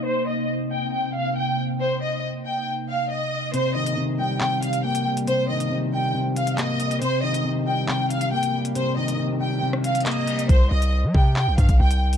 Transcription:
<<
  \new Staff \with { instrumentName = "Violin section" } { \time 4/4 \key c \minor \tempo 4 = 138 c''8 ees''8 r8 g''8 g''8 f''8 g''8 r8 | c''8 ees''8 r8 g''8 r8 f''8 ees''4 | c''8 ees''8 r8 g''8 g''8 f''8 g''8 r8 | c''8 ees''8 r8 g''8 r8 f''8 ees''4 |
c''8 ees''8 r8 g''8 g''8 f''8 g''8 r8 | c''8 ees''8 r8 g''8 r8 f''8 ees''4 | c''8 ees''8 r8 g''8 g''8 f''8 g''8 r8 | }
  \new Staff \with { instrumentName = "Ambient pad" } { \time 4/4 \key c \minor <c bes ees'>1~ | <c bes ees'>1 | r1 | r1 |
r1 | r1 | r1 | }
  \new Staff \with { instrumentName = "Clean electric guitar" } { \clef bass \time 4/4 \key c \minor r1 | r1 | c8 ees8 c8 g8 c4 bes8 g8 | c8 ees8 c8 g8 c4 bes8 g8 |
c8 ees8 c8 g8 c4 bes8 g8 | c8 ees8 c8 g8 c4 bes8 g8 | r1 | }
  \new Staff \with { instrumentName = "808-style bass" } { \clef bass \time 4/4 \key c \minor r1 | r1 | r1 | r1 |
r1 | r1 | c,8 c,8. g16 c8. bes,,16 g,16 bes,,16 c,4 | }
  \new DrumStaff \with { instrumentName = "Drums" } \drummode { \time 4/4 r4 r4 r4 r4 | r4 r4 r4 r4 | hh8. hh16 r4 hc8 hh16 hh16 r16 hh8 hh16 | hh8. hh16 r4 r8 hh16 hh16 <hc hh>8 hh16 hh16 |
hh8. hh16 r4 hc8 hh16 hh16 r16 hh8 hh16 | hh8. hh16 r4 r16 ss16 hh16 hh32 hh32 <hc hh>32 hh16. hh16 hh16 | <hh bd>8. hh16 r8 bd8 hc8 <hh bd>16 <hh bd>16 r16 hh8 hh16 | }
>>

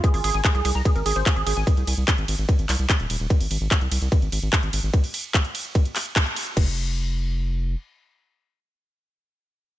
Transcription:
<<
  \new Staff \with { instrumentName = "Synth arpeggio sound" } { \time 4/4 \tempo 4 = 147 aes'16 aes'16 aes'16 aes''16 aes'16 aes'16 aes'16 bes''16 aes'16 bes'16 aes'16 c''16 aes'16 aes'16 aes'16 aes''16 | r1 | r1 | r1 |
r1 | r1 | }
  \new Staff \with { instrumentName = "Analog synth bass" } { \clef bass \time 4/4 r16 aes,,16 aes,,16 aes,,16 r16 c,16 c,16 c,16 r16 aes,,16 aes,,16 aes,,16 r16 aes,,16 aes,,16 aes,,16 | r16 c,16 c,16 c,16 r16 aes,,16 aes,,16 aes,,16 r16 aes,,16 c,16 c,16 r16 ees,,16 ees,,16 ees,,16 | r16 aes,,16 aes,,16 aes,,16 r16 c,16 c,16 c,16 r16 aes,,16 aes,,16 aes,,16 r16 aes,,16 aes,,16 aes,,16 | r1 |
f,,2. r4 | r1 | }
  \new DrumStaff \with { instrumentName = "Drums" } \drummode { \time 4/4 <hh bd>16 hho16 <hho cymr>16 hh16 <hc hh bd>16 hh16 <hho cymr>16 hh16 <hh bd>16 hh16 <hho cymr>16 hh16 <hc hh bd>16 hh16 <hho cymr>16 hh16 | <hh bd>16 hh16 <hho cymr>8 <hc hh bd>16 hh16 <hho cymr>16 hh16 <hh bd>16 hh16 <hc hho cymr>16 hh16 <hc hh bd>16 hh16 <hho cymr>16 hh16 | <hh bd>16 hho16 <hho cymr>16 hh16 <hc hh bd>16 hh16 <hho cymr>16 hh16 <hh bd>16 hh16 <hho cymr>16 hh16 <hc hh bd>16 hh16 <hho cymr>16 hh16 | <hh bd>16 hho16 <hho cymr>16 hh16 <hc hh bd>16 hh16 <hho cymr>16 hh16 <hh bd>16 hh16 <hc hho cymr>16 hh16 <hc hh bd>16 hh16 <hho cymr>16 hh16 |
<cymc bd>4 r4 r4 r4 | r4 r4 r4 r4 | }
>>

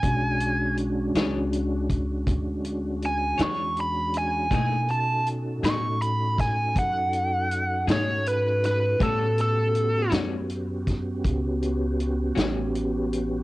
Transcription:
<<
  \new Staff \with { instrumentName = "Lead electric guitar" } { \time 12/8 \key e \mixolydian \tempo 4. = 54 gis''4 r2. gis''8 cis'''8 b''8 gis''8 | gis''8 a''8 r8 cis'''8 b''8 gis''8 fis''4. cis''8 b'8 b'8 | a'8 a'4 r1 r8 | }
  \new Staff \with { instrumentName = "Tonewheel organ" } { \time 12/8 \key e \mixolydian <gis cis' d' fis'>1. | <ais d' e' a'>8 <cis' dis' fis' a'>1~ <cis' dis' fis' a'>4. | <b cis' fis' g'>1. | }
  \new Staff \with { instrumentName = "Clean electric guitar" } { \time 12/8 \key e \mixolydian r4. <e d' gis' cis''>8 r2 r8 <e d' gis' cis''>8 r4 | <b, a dis' gis'>8 r4 <b, a dis' gis'>8 r2 r8 <b, a dis' gis'>8 r4 | <a, g cis' fis'>8 r4 <a, g cis' fis'>8 r2 r8 <a, g cis' fis'>8 r4 | }
  \new Staff \with { instrumentName = "Upright bass" } { \clef bass \time 12/8 \key e \mixolydian b,,4. cis,4. d,4. e,4. | b,4. a,4. fis,4. gis,4. | a,4. fis,4. cis,4. a,,4. | }
  \new DrumStaff \with { instrumentName = "Drums" } \drummode { \time 12/8 <hh bd>8 hh8 hh8 <hh sn>8 hh8 <hh bd>8 <hh bd>8 hh8 hh8 <hh sn>8 hh8 hh8 | <hh bd>8 hh8 hh8 <hh sn>8 hh8 <hh bd sn>8 <hh bd>8 hh8 hh8 <hh sn>8 hh8 <hh sn>8 | <hh bd>8 hh8 hh8 <hh sn>8 hh8 <hh bd sn>8 <hh bd>8 hh8 hh8 <hh sn>8 hh8 hh8 | }
>>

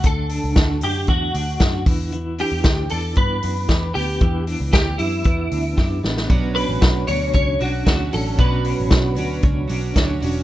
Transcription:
<<
  \new Staff \with { instrumentName = "Clean electric guitar" } { \time 4/4 \key e \dorian \tempo 4 = 115 a'4. g'8 fis'4. r8 | r8 g'4 a'8 b'4. g'8~ | g'8 r8 g'8 e'2 r8 | r8 b'4 cis''8 cis''8 fis'4 a'8 |
b'2 r2 | }
  \new Staff \with { instrumentName = "Clean electric guitar" } { \time 4/4 \key e \dorian <d a d' fis'>8 d'8 fis'8 d'8 a8 d'8 fis'8 e8 | e8 d'8 g'8 d'8 b8 d'8 g'8 b8 | e8 d'8 g'8 d'8 b8 d'8 g'8 b8 | b,8 d'8 fis'8 d'8 cis'8 d'8 fis'8 cis'8 |
b,8 d'8 fis'8 d'8 cis'8 d'8 fis'8 cis'8 | }
  \new Staff \with { instrumentName = "Twelve-string acoustic guitar" } { \time 4/4 \key e \dorian r1 | r1 | r1 | <b, fis cis' d' fis'>4. <fis cis' d' fis'>4 <fis cis' d' fis'>8 <fis cis' d' fis'>8 <fis cis' d' fis'>8 |
<b, fis cis' d' fis'>4. <fis cis' d' fis'>4 <fis cis' d' fis'>8 <fis cis' d' fis'>8 <fis cis' d' fis'>8 | }
  \new Staff \with { instrumentName = "Picked electric bass" } { \clef bass \time 4/4 \key e \dorian d,8. cis,16 d,8 fis,8 e,8 d,8 fis,8 e,8~ | e,8. e,16 d,8 e,8 g,8 fis,8 e,8 d,8 | e,8. cis,16 d,8 fis,8 e,8 d,8 fis,8 a,,8 | b,,8. a,,16 b,,8 d,8 cis,8 b,,8 d,8 a,,8 |
b,,8. a,,16 b,,8 d,8 cis,8 b,,8 d,8 e,,8 | }
  \new DrumStaff \with { instrumentName = "Drums" } \drummode { \time 4/4 <hh bd>8 hho8 <hh bd sn>8 hho8 <hh bd>8 hho8 <hh bd sn>8 <hho bd>8 | hh8 hho8 <hh bd sn>8 hho8 <hh bd>8 hho8 <hh bd sn>8 hho8 | <hh bd>8 hho8 <hh bd sn>8 hho8 <hh bd>8 hho8 <bd sn>8 sn16 sn16 | <hh bd>8 hho8 <hh bd sn>8 hho8 <hh bd>8 hho8 <hh bd sn>8 hho8 |
<hh bd>8 hho8 <hh bd sn>8 hho8 <hh bd>8 hho8 <hh bd sn>8 hho8 | }
>>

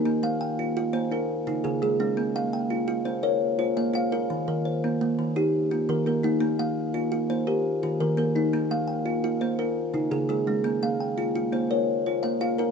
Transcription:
<<
  \new Staff \with { instrumentName = "Kalimba" } { \time 12/8 \key bes \dorian \tempo 4. = 113 ees'8 r8 g''4. c''8 f'4. aes'4 des'8~ | des'8 r8 g''4. c''8 des''4. f''4 bes'8~ | bes'8 r8 c''4. r8 g'4. bes'4 ees'8~ | ees'8 r2 c''8 g'4. bes'4 ees'8~ |
ees'8 r8 g''4. c''8 f'4. aes'4 des'8~ | des'8 r8 g''4. c''8 des''4. f''4 bes'8 | }
  \new Staff \with { instrumentName = "Kalimba" } { \time 12/8 \key bes \dorian bes4 r8 f'4 bes8 r4 des4 aes4 | bes4 r8 f'4 bes4 r8 f'4 f'4 | ees4 r8 bes4 ees4 r8 bes4 bes4 | bes4 r8 f'4 bes8 r4 ees4 bes4 |
bes4 r8 f'4 bes8 r4 des4 aes4 | bes4 r8 f'4 bes4 r8 f'4 f'4 | }
  \new Staff \with { instrumentName = "Kalimba" } { \time 12/8 \key bes \dorian bes'8 f''4. r2 ees'4 aes'4~ | aes'8 f''4. r2 c''4 f''4~ | f''8 bes'4. r2 f'4 bes'4~ | bes'8 f''4. r2 f'4 bes'4~ |
bes'8 f''4. r2 ees'4 aes'4~ | aes'8 f''4. r2 c''4 f''4 | }
  \new Staff \with { instrumentName = "Kalimba" } { \time 12/8 \key bes \dorian bes8 bes4 r8 f'4 bes'8 r4 des4 aes8~ | aes8 bes4 r8 f'4 bes'4 r8 bes4 f'8~ | f'8 ees4 r8 bes4 ees'4 r8 ees4 bes8~ | bes8 bes4 r8 f'4 bes'8 r4 ees4 bes8~ |
bes8 bes4 r8 f'4 bes'8 r4 des4 aes8~ | aes8 bes4 r8 f'4 bes'4 r8 bes4 f'8 | }
>>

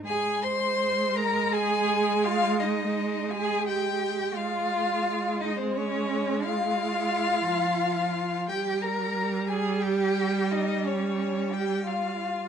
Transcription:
<<
  \new Staff \with { instrumentName = "Violin" } { \time 12/8 \key aes \major \tempo 4. = 58 aes''8 c'''4 bes''8 aes''4 f''8 ees''4 aes''8 g''4 | f''4. ees''16 c''16 des''4 f''2. | g''8 bes''4 aes''8 g''4 ees''8 des''4 g''8 f''4 | }
  \new Staff \with { instrumentName = "Violin" } { \time 12/8 \key aes \major aes''8 c'''4 bes''8 aes''4 f''8 ees''4 aes''8 g''4 | f''4. ees''16 c''16 des''4 f''2. | g''8 bes''4 aes''8 g''4 ees''8 des''4 g''8 f''4 | }
  \new Staff \with { instrumentName = "Cello" } { \time 12/8 \key aes \major aes'8 c''4 bes'8 aes'4 f'8 ees'4 aes'8 g'4 | f'4. ees'16 c'16 des'4 f'2. | g'8 bes'4 aes'8 g'4 ees'8 des'4 g'8 f'4 | }
  \new Staff \with { instrumentName = "Viola" } { \clef bass \time 12/8 \key aes \major aes1. | aes1~ aes8 f4. | g1. | }
>>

